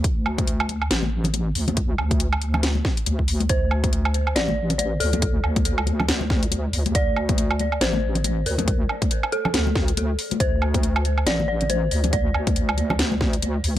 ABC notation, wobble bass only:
X:1
M:4/4
L:1/8
Q:"Swing 16ths" 1/4=139
K:Cmix
V:1 name="Wobble bass" clef=bass
D,,4 A,,,3 D,,- | D,, D,,4 z D,,2 | D,,4 A,,,3 D,,- | D,, D,,6 D,, |
D,,4 A,,,3 D,,- | D,, z3 D,,3 z | D,,4 A,,,3 D,,- | D,, D,,6 D,, |]